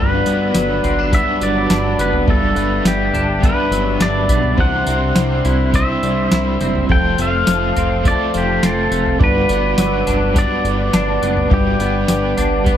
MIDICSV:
0, 0, Header, 1, 7, 480
1, 0, Start_track
1, 0, Key_signature, 1, "major"
1, 0, Tempo, 576923
1, 1899, Time_signature, 4, 2, 24, 8
1, 10625, End_track
2, 0, Start_track
2, 0, Title_t, "Tonewheel organ"
2, 0, Program_c, 0, 16
2, 0, Note_on_c, 0, 62, 73
2, 0, Note_on_c, 0, 74, 64
2, 0, Note_on_c, 0, 78, 70
2, 0, Note_on_c, 0, 83, 81
2, 1882, Note_off_c, 0, 78, 0
2, 1891, Note_on_c, 0, 76, 66
2, 3785, Note_off_c, 0, 83, 0
2, 3786, Note_off_c, 0, 74, 0
2, 3801, Note_on_c, 0, 72, 65
2, 3802, Note_on_c, 0, 84, 79
2, 5702, Note_off_c, 0, 76, 0
2, 5705, Note_off_c, 0, 62, 0
2, 5711, Note_off_c, 0, 72, 0
2, 5740, Note_on_c, 0, 69, 69
2, 5741, Note_on_c, 0, 72, 63
2, 5741, Note_on_c, 0, 77, 66
2, 7617, Note_off_c, 0, 84, 0
2, 7640, Note_off_c, 0, 69, 0
2, 7641, Note_off_c, 0, 72, 0
2, 7641, Note_off_c, 0, 77, 0
2, 7648, Note_on_c, 0, 86, 82
2, 7652, Note_on_c, 0, 71, 71
2, 7652, Note_on_c, 0, 74, 65
2, 7653, Note_on_c, 0, 78, 67
2, 10625, Note_off_c, 0, 71, 0
2, 10625, Note_off_c, 0, 74, 0
2, 10625, Note_off_c, 0, 78, 0
2, 10625, Note_off_c, 0, 86, 0
2, 10625, End_track
3, 0, Start_track
3, 0, Title_t, "Pedal steel guitar"
3, 0, Program_c, 1, 26
3, 0, Note_on_c, 1, 71, 92
3, 953, Note_on_c, 1, 76, 86
3, 973, Note_off_c, 1, 71, 0
3, 1188, Note_off_c, 1, 76, 0
3, 1191, Note_on_c, 1, 74, 89
3, 1674, Note_on_c, 1, 71, 87
3, 1679, Note_off_c, 1, 74, 0
3, 1913, Note_off_c, 1, 71, 0
3, 1916, Note_on_c, 1, 69, 97
3, 2392, Note_on_c, 1, 67, 85
3, 2402, Note_off_c, 1, 69, 0
3, 2874, Note_on_c, 1, 71, 86
3, 2880, Note_off_c, 1, 67, 0
3, 3346, Note_on_c, 1, 74, 96
3, 3361, Note_off_c, 1, 71, 0
3, 3831, Note_on_c, 1, 78, 104
3, 3837, Note_off_c, 1, 74, 0
3, 4785, Note_off_c, 1, 78, 0
3, 4788, Note_on_c, 1, 76, 95
3, 5751, Note_off_c, 1, 76, 0
3, 5755, Note_on_c, 1, 79, 122
3, 5994, Note_off_c, 1, 79, 0
3, 6005, Note_on_c, 1, 77, 103
3, 6720, Note_on_c, 1, 74, 98
3, 6733, Note_off_c, 1, 77, 0
3, 6956, Note_off_c, 1, 74, 0
3, 6969, Note_on_c, 1, 67, 94
3, 7200, Note_off_c, 1, 67, 0
3, 7203, Note_on_c, 1, 69, 96
3, 7638, Note_off_c, 1, 69, 0
3, 7684, Note_on_c, 1, 71, 107
3, 8637, Note_off_c, 1, 71, 0
3, 8640, Note_on_c, 1, 74, 98
3, 9556, Note_off_c, 1, 74, 0
3, 9599, Note_on_c, 1, 67, 95
3, 10625, Note_off_c, 1, 67, 0
3, 10625, End_track
4, 0, Start_track
4, 0, Title_t, "Overdriven electric guitar"
4, 0, Program_c, 2, 29
4, 0, Note_on_c, 2, 55, 80
4, 0, Note_on_c, 2, 62, 84
4, 0, Note_on_c, 2, 66, 87
4, 0, Note_on_c, 2, 71, 88
4, 203, Note_off_c, 2, 71, 0
4, 213, Note_on_c, 2, 71, 56
4, 216, Note_off_c, 2, 55, 0
4, 221, Note_off_c, 2, 62, 0
4, 225, Note_off_c, 2, 66, 0
4, 233, Note_on_c, 2, 66, 49
4, 249, Note_on_c, 2, 62, 46
4, 922, Note_on_c, 2, 55, 64
4, 936, Note_off_c, 2, 71, 0
4, 939, Note_off_c, 2, 62, 0
4, 946, Note_off_c, 2, 66, 0
4, 949, Note_on_c, 2, 62, 59
4, 972, Note_on_c, 2, 66, 61
4, 990, Note_on_c, 2, 71, 72
4, 1888, Note_off_c, 2, 55, 0
4, 1891, Note_on_c, 2, 55, 79
4, 1893, Note_off_c, 2, 62, 0
4, 1899, Note_off_c, 2, 66, 0
4, 1903, Note_on_c, 2, 62, 73
4, 1905, Note_off_c, 2, 71, 0
4, 1909, Note_on_c, 2, 66, 85
4, 1915, Note_on_c, 2, 71, 78
4, 2114, Note_off_c, 2, 71, 0
4, 2124, Note_on_c, 2, 71, 46
4, 2135, Note_off_c, 2, 55, 0
4, 2141, Note_off_c, 2, 62, 0
4, 2144, Note_off_c, 2, 66, 0
4, 2157, Note_on_c, 2, 62, 46
4, 2827, Note_on_c, 2, 55, 62
4, 2846, Note_off_c, 2, 62, 0
4, 2851, Note_off_c, 2, 71, 0
4, 2856, Note_on_c, 2, 62, 55
4, 2877, Note_on_c, 2, 66, 53
4, 2896, Note_on_c, 2, 71, 61
4, 3807, Note_on_c, 2, 48, 69
4, 3812, Note_on_c, 2, 52, 88
4, 3815, Note_off_c, 2, 55, 0
4, 3817, Note_off_c, 2, 62, 0
4, 3818, Note_on_c, 2, 55, 74
4, 3821, Note_on_c, 2, 60, 86
4, 3822, Note_off_c, 2, 66, 0
4, 3825, Note_on_c, 2, 64, 78
4, 3826, Note_off_c, 2, 71, 0
4, 3829, Note_on_c, 2, 72, 86
4, 4033, Note_off_c, 2, 72, 0
4, 4042, Note_off_c, 2, 64, 0
4, 4043, Note_on_c, 2, 72, 56
4, 4051, Note_off_c, 2, 60, 0
4, 4052, Note_on_c, 2, 64, 46
4, 4053, Note_off_c, 2, 48, 0
4, 4055, Note_off_c, 2, 52, 0
4, 4059, Note_off_c, 2, 55, 0
4, 4060, Note_on_c, 2, 60, 43
4, 4073, Note_on_c, 2, 55, 46
4, 4746, Note_off_c, 2, 55, 0
4, 4756, Note_on_c, 2, 55, 59
4, 4776, Note_off_c, 2, 64, 0
4, 4780, Note_off_c, 2, 60, 0
4, 4783, Note_on_c, 2, 60, 56
4, 4806, Note_on_c, 2, 64, 65
4, 4819, Note_off_c, 2, 72, 0
4, 4822, Note_on_c, 2, 72, 67
4, 5727, Note_off_c, 2, 55, 0
4, 5733, Note_on_c, 2, 53, 81
4, 5740, Note_on_c, 2, 57, 81
4, 5742, Note_off_c, 2, 60, 0
4, 5746, Note_on_c, 2, 60, 85
4, 5747, Note_off_c, 2, 64, 0
4, 5750, Note_on_c, 2, 65, 90
4, 5754, Note_off_c, 2, 72, 0
4, 5757, Note_on_c, 2, 69, 88
4, 5961, Note_off_c, 2, 69, 0
4, 5971, Note_on_c, 2, 69, 51
4, 5976, Note_off_c, 2, 53, 0
4, 5978, Note_off_c, 2, 65, 0
4, 5979, Note_off_c, 2, 57, 0
4, 5982, Note_off_c, 2, 60, 0
4, 5987, Note_on_c, 2, 65, 54
4, 6003, Note_on_c, 2, 60, 46
4, 6676, Note_on_c, 2, 57, 55
4, 6694, Note_off_c, 2, 60, 0
4, 6695, Note_off_c, 2, 69, 0
4, 6703, Note_off_c, 2, 65, 0
4, 6704, Note_on_c, 2, 60, 62
4, 6725, Note_on_c, 2, 65, 60
4, 6748, Note_on_c, 2, 69, 64
4, 7644, Note_off_c, 2, 57, 0
4, 7648, Note_on_c, 2, 55, 75
4, 7655, Note_off_c, 2, 60, 0
4, 7659, Note_on_c, 2, 62, 81
4, 7662, Note_off_c, 2, 65, 0
4, 7665, Note_on_c, 2, 66, 81
4, 7670, Note_off_c, 2, 69, 0
4, 7673, Note_on_c, 2, 71, 89
4, 7881, Note_off_c, 2, 71, 0
4, 7891, Note_on_c, 2, 71, 60
4, 7893, Note_off_c, 2, 55, 0
4, 7898, Note_off_c, 2, 66, 0
4, 7899, Note_off_c, 2, 62, 0
4, 7908, Note_on_c, 2, 66, 50
4, 7923, Note_on_c, 2, 62, 46
4, 8600, Note_on_c, 2, 55, 60
4, 8615, Note_off_c, 2, 71, 0
4, 8620, Note_off_c, 2, 62, 0
4, 8624, Note_off_c, 2, 66, 0
4, 8630, Note_on_c, 2, 62, 69
4, 8654, Note_on_c, 2, 66, 64
4, 8672, Note_on_c, 2, 71, 73
4, 9559, Note_off_c, 2, 55, 0
4, 9563, Note_on_c, 2, 55, 77
4, 9564, Note_off_c, 2, 62, 0
4, 9571, Note_off_c, 2, 66, 0
4, 9574, Note_on_c, 2, 62, 83
4, 9576, Note_off_c, 2, 71, 0
4, 9581, Note_on_c, 2, 66, 84
4, 9586, Note_on_c, 2, 71, 82
4, 9794, Note_off_c, 2, 71, 0
4, 9804, Note_on_c, 2, 71, 53
4, 9811, Note_off_c, 2, 55, 0
4, 9816, Note_off_c, 2, 62, 0
4, 9820, Note_off_c, 2, 66, 0
4, 9836, Note_on_c, 2, 62, 47
4, 10517, Note_on_c, 2, 55, 78
4, 10531, Note_off_c, 2, 62, 0
4, 10531, Note_off_c, 2, 71, 0
4, 10541, Note_on_c, 2, 62, 69
4, 10587, Note_on_c, 2, 71, 79
4, 10625, Note_off_c, 2, 55, 0
4, 10625, Note_off_c, 2, 62, 0
4, 10625, Note_off_c, 2, 71, 0
4, 10625, End_track
5, 0, Start_track
5, 0, Title_t, "Clean electric guitar"
5, 0, Program_c, 3, 27
5, 0, Note_on_c, 3, 43, 77
5, 222, Note_on_c, 3, 59, 61
5, 458, Note_on_c, 3, 54, 57
5, 697, Note_on_c, 3, 60, 69
5, 820, Note_off_c, 3, 60, 0
5, 820, Note_on_c, 3, 62, 58
5, 926, Note_off_c, 3, 59, 0
5, 936, Note_on_c, 3, 59, 65
5, 1164, Note_off_c, 3, 54, 0
5, 1174, Note_on_c, 3, 54, 59
5, 1406, Note_off_c, 3, 62, 0
5, 1416, Note_on_c, 3, 62, 67
5, 1646, Note_off_c, 3, 59, 0
5, 1656, Note_on_c, 3, 59, 66
5, 1879, Note_off_c, 3, 43, 0
5, 1889, Note_on_c, 3, 43, 82
5, 2120, Note_off_c, 3, 59, 0
5, 2130, Note_on_c, 3, 59, 58
5, 2377, Note_off_c, 3, 54, 0
5, 2600, Note_off_c, 3, 62, 0
5, 2609, Note_on_c, 3, 62, 69
5, 2837, Note_off_c, 3, 59, 0
5, 2847, Note_on_c, 3, 59, 61
5, 3090, Note_on_c, 3, 54, 58
5, 3317, Note_off_c, 3, 62, 0
5, 3327, Note_on_c, 3, 62, 59
5, 3561, Note_off_c, 3, 59, 0
5, 3571, Note_on_c, 3, 59, 64
5, 3807, Note_on_c, 3, 48, 80
5, 3814, Note_off_c, 3, 43, 0
5, 3861, Note_off_c, 3, 62, 0
5, 3862, Note_off_c, 3, 54, 0
5, 3863, Note_off_c, 3, 59, 0
5, 4049, Note_on_c, 3, 60, 64
5, 4297, Note_on_c, 3, 55, 56
5, 4535, Note_on_c, 3, 64, 66
5, 4773, Note_off_c, 3, 60, 0
5, 4777, Note_on_c, 3, 60, 64
5, 5009, Note_off_c, 3, 55, 0
5, 5019, Note_on_c, 3, 55, 64
5, 5249, Note_off_c, 3, 64, 0
5, 5259, Note_on_c, 3, 64, 64
5, 5496, Note_off_c, 3, 60, 0
5, 5499, Note_on_c, 3, 60, 63
5, 5733, Note_off_c, 3, 48, 0
5, 5738, Note_on_c, 3, 41, 94
5, 5787, Note_off_c, 3, 55, 0
5, 5787, Note_off_c, 3, 64, 0
5, 5976, Note_off_c, 3, 60, 0
5, 5980, Note_on_c, 3, 57, 58
5, 6217, Note_on_c, 3, 53, 62
5, 6459, Note_on_c, 3, 60, 72
5, 6687, Note_off_c, 3, 57, 0
5, 6697, Note_on_c, 3, 57, 65
5, 6929, Note_off_c, 3, 53, 0
5, 6939, Note_on_c, 3, 53, 62
5, 7166, Note_off_c, 3, 60, 0
5, 7176, Note_on_c, 3, 60, 73
5, 7409, Note_off_c, 3, 57, 0
5, 7419, Note_on_c, 3, 57, 69
5, 7656, Note_off_c, 3, 41, 0
5, 7659, Note_on_c, 3, 43, 87
5, 7705, Note_off_c, 3, 60, 0
5, 7707, Note_off_c, 3, 53, 0
5, 7707, Note_off_c, 3, 57, 0
5, 7902, Note_on_c, 3, 59, 60
5, 8141, Note_on_c, 3, 54, 59
5, 8375, Note_on_c, 3, 62, 71
5, 8608, Note_off_c, 3, 59, 0
5, 8618, Note_on_c, 3, 59, 63
5, 8860, Note_off_c, 3, 54, 0
5, 9085, Note_off_c, 3, 62, 0
5, 9095, Note_on_c, 3, 62, 70
5, 9327, Note_off_c, 3, 59, 0
5, 9337, Note_on_c, 3, 59, 61
5, 9561, Note_off_c, 3, 43, 0
5, 9571, Note_on_c, 3, 43, 88
5, 9806, Note_off_c, 3, 59, 0
5, 9816, Note_on_c, 3, 59, 67
5, 10284, Note_off_c, 3, 62, 0
5, 10294, Note_on_c, 3, 62, 70
5, 10526, Note_off_c, 3, 59, 0
5, 10536, Note_on_c, 3, 59, 61
5, 10625, Note_off_c, 3, 43, 0
5, 10625, Note_off_c, 3, 59, 0
5, 10625, Note_off_c, 3, 62, 0
5, 10625, End_track
6, 0, Start_track
6, 0, Title_t, "Analog synth bass"
6, 0, Program_c, 4, 38
6, 0, Note_on_c, 4, 31, 118
6, 190, Note_off_c, 4, 31, 0
6, 221, Note_on_c, 4, 31, 100
6, 432, Note_off_c, 4, 31, 0
6, 459, Note_on_c, 4, 31, 110
6, 670, Note_off_c, 4, 31, 0
6, 698, Note_on_c, 4, 31, 97
6, 1015, Note_off_c, 4, 31, 0
6, 1179, Note_on_c, 4, 31, 108
6, 1390, Note_off_c, 4, 31, 0
6, 1415, Note_on_c, 4, 31, 99
6, 1628, Note_off_c, 4, 31, 0
6, 1655, Note_on_c, 4, 30, 101
6, 1868, Note_off_c, 4, 30, 0
6, 1897, Note_on_c, 4, 31, 97
6, 2109, Note_off_c, 4, 31, 0
6, 2129, Note_on_c, 4, 31, 100
6, 2344, Note_off_c, 4, 31, 0
6, 2371, Note_on_c, 4, 31, 101
6, 2586, Note_off_c, 4, 31, 0
6, 2610, Note_on_c, 4, 31, 107
6, 2931, Note_off_c, 4, 31, 0
6, 3090, Note_on_c, 4, 31, 94
6, 3305, Note_off_c, 4, 31, 0
6, 3328, Note_on_c, 4, 31, 97
6, 3570, Note_on_c, 4, 35, 98
6, 3583, Note_off_c, 4, 31, 0
6, 3785, Note_off_c, 4, 35, 0
6, 3813, Note_on_c, 4, 36, 108
6, 4027, Note_off_c, 4, 36, 0
6, 4055, Note_on_c, 4, 36, 111
6, 4268, Note_off_c, 4, 36, 0
6, 4298, Note_on_c, 4, 36, 104
6, 4509, Note_off_c, 4, 36, 0
6, 4538, Note_on_c, 4, 36, 106
6, 4855, Note_off_c, 4, 36, 0
6, 5017, Note_on_c, 4, 36, 109
6, 5229, Note_off_c, 4, 36, 0
6, 5263, Note_on_c, 4, 36, 105
6, 5472, Note_off_c, 4, 36, 0
6, 5499, Note_on_c, 4, 30, 101
6, 5710, Note_off_c, 4, 30, 0
6, 5739, Note_on_c, 4, 29, 112
6, 5950, Note_off_c, 4, 29, 0
6, 5980, Note_on_c, 4, 29, 107
6, 6191, Note_off_c, 4, 29, 0
6, 6219, Note_on_c, 4, 29, 104
6, 6430, Note_off_c, 4, 29, 0
6, 6461, Note_on_c, 4, 29, 96
6, 6777, Note_off_c, 4, 29, 0
6, 6946, Note_on_c, 4, 29, 101
6, 7154, Note_off_c, 4, 29, 0
6, 7182, Note_on_c, 4, 29, 100
6, 7392, Note_off_c, 4, 29, 0
6, 7418, Note_on_c, 4, 29, 100
6, 7630, Note_off_c, 4, 29, 0
6, 7661, Note_on_c, 4, 31, 124
6, 7871, Note_off_c, 4, 31, 0
6, 7902, Note_on_c, 4, 31, 106
6, 8112, Note_off_c, 4, 31, 0
6, 8143, Note_on_c, 4, 31, 102
6, 8352, Note_off_c, 4, 31, 0
6, 8378, Note_on_c, 4, 31, 101
6, 8695, Note_off_c, 4, 31, 0
6, 8859, Note_on_c, 4, 31, 104
6, 9070, Note_off_c, 4, 31, 0
6, 9103, Note_on_c, 4, 31, 93
6, 9312, Note_off_c, 4, 31, 0
6, 9340, Note_on_c, 4, 30, 105
6, 9551, Note_off_c, 4, 30, 0
6, 9578, Note_on_c, 4, 31, 120
6, 9790, Note_off_c, 4, 31, 0
6, 9817, Note_on_c, 4, 31, 107
6, 10029, Note_off_c, 4, 31, 0
6, 10058, Note_on_c, 4, 31, 109
6, 10270, Note_off_c, 4, 31, 0
6, 10298, Note_on_c, 4, 31, 105
6, 10615, Note_off_c, 4, 31, 0
6, 10625, End_track
7, 0, Start_track
7, 0, Title_t, "Drums"
7, 215, Note_on_c, 9, 54, 67
7, 299, Note_off_c, 9, 54, 0
7, 454, Note_on_c, 9, 38, 127
7, 454, Note_on_c, 9, 54, 102
7, 537, Note_off_c, 9, 38, 0
7, 537, Note_off_c, 9, 54, 0
7, 698, Note_on_c, 9, 43, 68
7, 698, Note_on_c, 9, 54, 60
7, 781, Note_off_c, 9, 43, 0
7, 781, Note_off_c, 9, 54, 0
7, 937, Note_on_c, 9, 36, 88
7, 938, Note_on_c, 9, 43, 57
7, 938, Note_on_c, 9, 54, 65
7, 1021, Note_off_c, 9, 36, 0
7, 1022, Note_off_c, 9, 43, 0
7, 1022, Note_off_c, 9, 54, 0
7, 1176, Note_on_c, 9, 54, 66
7, 1260, Note_off_c, 9, 54, 0
7, 1414, Note_on_c, 9, 54, 88
7, 1415, Note_on_c, 9, 38, 103
7, 1497, Note_off_c, 9, 54, 0
7, 1498, Note_off_c, 9, 38, 0
7, 1658, Note_on_c, 9, 54, 73
7, 1741, Note_off_c, 9, 54, 0
7, 1773, Note_on_c, 9, 43, 64
7, 1856, Note_off_c, 9, 43, 0
7, 1895, Note_on_c, 9, 43, 116
7, 1896, Note_on_c, 9, 36, 112
7, 1978, Note_off_c, 9, 43, 0
7, 1979, Note_off_c, 9, 36, 0
7, 2132, Note_on_c, 9, 54, 62
7, 2215, Note_off_c, 9, 54, 0
7, 2374, Note_on_c, 9, 38, 127
7, 2375, Note_on_c, 9, 54, 106
7, 2457, Note_off_c, 9, 38, 0
7, 2458, Note_off_c, 9, 54, 0
7, 2617, Note_on_c, 9, 43, 59
7, 2617, Note_on_c, 9, 54, 69
7, 2700, Note_off_c, 9, 43, 0
7, 2700, Note_off_c, 9, 54, 0
7, 2855, Note_on_c, 9, 36, 99
7, 2857, Note_on_c, 9, 43, 63
7, 2857, Note_on_c, 9, 54, 59
7, 2938, Note_off_c, 9, 36, 0
7, 2940, Note_off_c, 9, 43, 0
7, 2940, Note_off_c, 9, 54, 0
7, 3096, Note_on_c, 9, 54, 62
7, 3179, Note_off_c, 9, 54, 0
7, 3331, Note_on_c, 9, 54, 95
7, 3333, Note_on_c, 9, 38, 102
7, 3415, Note_off_c, 9, 54, 0
7, 3416, Note_off_c, 9, 38, 0
7, 3570, Note_on_c, 9, 36, 95
7, 3570, Note_on_c, 9, 54, 79
7, 3653, Note_off_c, 9, 36, 0
7, 3653, Note_off_c, 9, 54, 0
7, 3690, Note_on_c, 9, 43, 64
7, 3773, Note_off_c, 9, 43, 0
7, 3808, Note_on_c, 9, 43, 113
7, 3811, Note_on_c, 9, 36, 116
7, 3891, Note_off_c, 9, 43, 0
7, 3894, Note_off_c, 9, 36, 0
7, 4048, Note_on_c, 9, 54, 67
7, 4131, Note_off_c, 9, 54, 0
7, 4289, Note_on_c, 9, 38, 127
7, 4290, Note_on_c, 9, 54, 94
7, 4373, Note_off_c, 9, 38, 0
7, 4373, Note_off_c, 9, 54, 0
7, 4532, Note_on_c, 9, 43, 66
7, 4532, Note_on_c, 9, 54, 69
7, 4616, Note_off_c, 9, 43, 0
7, 4616, Note_off_c, 9, 54, 0
7, 4773, Note_on_c, 9, 43, 60
7, 4773, Note_on_c, 9, 54, 56
7, 4774, Note_on_c, 9, 36, 90
7, 4856, Note_off_c, 9, 43, 0
7, 4856, Note_off_c, 9, 54, 0
7, 4857, Note_off_c, 9, 36, 0
7, 5016, Note_on_c, 9, 54, 62
7, 5099, Note_off_c, 9, 54, 0
7, 5254, Note_on_c, 9, 54, 87
7, 5255, Note_on_c, 9, 38, 101
7, 5337, Note_off_c, 9, 54, 0
7, 5338, Note_off_c, 9, 38, 0
7, 5496, Note_on_c, 9, 54, 71
7, 5579, Note_off_c, 9, 54, 0
7, 5619, Note_on_c, 9, 43, 69
7, 5702, Note_off_c, 9, 43, 0
7, 5734, Note_on_c, 9, 43, 107
7, 5737, Note_on_c, 9, 36, 111
7, 5818, Note_off_c, 9, 43, 0
7, 5820, Note_off_c, 9, 36, 0
7, 5976, Note_on_c, 9, 54, 71
7, 6059, Note_off_c, 9, 54, 0
7, 6215, Note_on_c, 9, 38, 127
7, 6215, Note_on_c, 9, 54, 100
7, 6298, Note_off_c, 9, 38, 0
7, 6299, Note_off_c, 9, 54, 0
7, 6460, Note_on_c, 9, 43, 66
7, 6460, Note_on_c, 9, 54, 61
7, 6543, Note_off_c, 9, 43, 0
7, 6543, Note_off_c, 9, 54, 0
7, 6699, Note_on_c, 9, 43, 64
7, 6699, Note_on_c, 9, 54, 67
7, 6700, Note_on_c, 9, 36, 83
7, 6783, Note_off_c, 9, 36, 0
7, 6783, Note_off_c, 9, 43, 0
7, 6783, Note_off_c, 9, 54, 0
7, 6938, Note_on_c, 9, 54, 71
7, 7022, Note_off_c, 9, 54, 0
7, 7180, Note_on_c, 9, 54, 90
7, 7181, Note_on_c, 9, 38, 102
7, 7263, Note_off_c, 9, 54, 0
7, 7264, Note_off_c, 9, 38, 0
7, 7419, Note_on_c, 9, 54, 72
7, 7502, Note_off_c, 9, 54, 0
7, 7541, Note_on_c, 9, 43, 67
7, 7624, Note_off_c, 9, 43, 0
7, 7659, Note_on_c, 9, 36, 120
7, 7659, Note_on_c, 9, 43, 125
7, 7742, Note_off_c, 9, 36, 0
7, 7742, Note_off_c, 9, 43, 0
7, 7896, Note_on_c, 9, 54, 66
7, 7979, Note_off_c, 9, 54, 0
7, 8135, Note_on_c, 9, 38, 127
7, 8136, Note_on_c, 9, 54, 97
7, 8218, Note_off_c, 9, 38, 0
7, 8219, Note_off_c, 9, 54, 0
7, 8377, Note_on_c, 9, 43, 63
7, 8377, Note_on_c, 9, 54, 70
7, 8461, Note_off_c, 9, 43, 0
7, 8461, Note_off_c, 9, 54, 0
7, 8618, Note_on_c, 9, 36, 87
7, 8619, Note_on_c, 9, 43, 59
7, 8619, Note_on_c, 9, 54, 67
7, 8701, Note_off_c, 9, 36, 0
7, 8702, Note_off_c, 9, 43, 0
7, 8702, Note_off_c, 9, 54, 0
7, 8861, Note_on_c, 9, 54, 66
7, 8944, Note_off_c, 9, 54, 0
7, 9097, Note_on_c, 9, 54, 96
7, 9098, Note_on_c, 9, 38, 115
7, 9180, Note_off_c, 9, 54, 0
7, 9182, Note_off_c, 9, 38, 0
7, 9340, Note_on_c, 9, 54, 80
7, 9423, Note_off_c, 9, 54, 0
7, 9460, Note_on_c, 9, 43, 65
7, 9543, Note_off_c, 9, 43, 0
7, 9578, Note_on_c, 9, 36, 111
7, 9579, Note_on_c, 9, 43, 112
7, 9661, Note_off_c, 9, 36, 0
7, 9662, Note_off_c, 9, 43, 0
7, 9816, Note_on_c, 9, 54, 62
7, 9900, Note_off_c, 9, 54, 0
7, 10054, Note_on_c, 9, 38, 127
7, 10054, Note_on_c, 9, 54, 105
7, 10137, Note_off_c, 9, 38, 0
7, 10137, Note_off_c, 9, 54, 0
7, 10296, Note_on_c, 9, 43, 63
7, 10296, Note_on_c, 9, 54, 69
7, 10379, Note_off_c, 9, 43, 0
7, 10379, Note_off_c, 9, 54, 0
7, 10535, Note_on_c, 9, 43, 65
7, 10535, Note_on_c, 9, 54, 64
7, 10537, Note_on_c, 9, 36, 96
7, 10619, Note_off_c, 9, 43, 0
7, 10619, Note_off_c, 9, 54, 0
7, 10620, Note_off_c, 9, 36, 0
7, 10625, End_track
0, 0, End_of_file